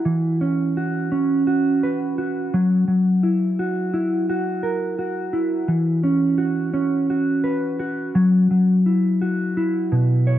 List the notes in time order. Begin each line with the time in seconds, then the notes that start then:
Already playing: E4 F#4 A#4
0.05 E3
0.41 C#4
0.77 F#4
1.12 C#4
1.47 F#4
1.83 B4
2.18 F#4
2.54 F#3
2.88 F#3
3.23 E4
3.59 F#4
3.94 E4
4.30 F#4
4.63 A#4
4.99 F#4
5.33 E4
5.68 E3
6.04 C#4
6.38 F#4
6.74 C#4
7.10 F#4
7.44 B4
7.79 F#4
8.15 F#3
8.51 F#3
8.86 E4
9.22 F#4
9.57 E4
9.92 B2
10.27 C#5